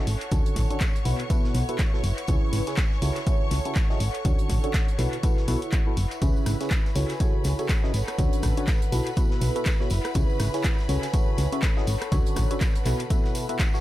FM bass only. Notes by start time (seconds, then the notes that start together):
0.07 G#1
0.32 D2
0.56 A1
1.05 B1
1.54 B1
2.04 F#1
2.28 C#2
2.53 G#1
3.02 C#2
3.51 C#2
4.00 G#1
4.25 D2
4.50 A1
4.99 B1
5.48 B1
5.97 F#1
6.22 C#2
6.46 G#1
6.96 C#2
7.45 C#2
7.94 G#1
8.19 D2
8.43 A1
8.92 B1
9.41 B1
9.91 F#1
10.15 C#2
10.40 G#1
10.89 C#2
11.38 C#2
11.87 G#1
12.12 D2
12.37 A1
12.86 B1